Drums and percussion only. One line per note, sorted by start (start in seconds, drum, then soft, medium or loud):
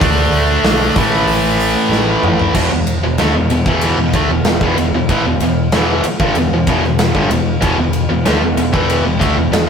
0.01 kick loud
0.01 open hi-hat medium
0.33 open hi-hat medium
0.64 snare loud
0.64 open hi-hat medium
0.96 kick loud
0.96 open hi-hat medium
1.27 open hi-hat medium
1.60 open hi-hat medium
1.92 snare medium
2.23 mid tom loud
2.39 floor tom medium
2.55 kick medium
2.55 crash loud
2.87 ride medium
3.18 snare medium
3.18 ride medium
3.50 ride medium
3.66 kick loud
3.66 snare soft
3.81 ride loud
4.13 kick medium
4.13 ride medium
4.45 snare loud
4.45 ride medium
4.61 kick loud
4.78 ride medium
5.09 kick loud
5.09 ride medium
5.40 ride medium
5.72 snare loud
5.72 ride medium
6.04 ride medium
6.20 kick loud
6.35 ride loud
6.67 kick loud
6.67 ride medium
6.84 snare soft
6.99 snare loud
6.99 ride loud
7.15 kick medium
7.31 ride medium
7.62 kick loud
7.62 ride loud
7.93 ride medium
8.26 snare loud
8.26 ride loud
8.57 ride medium
8.74 kick loud
8.90 ride loud
9.21 kick loud
9.21 ride medium
9.53 snare loud
9.53 ride loud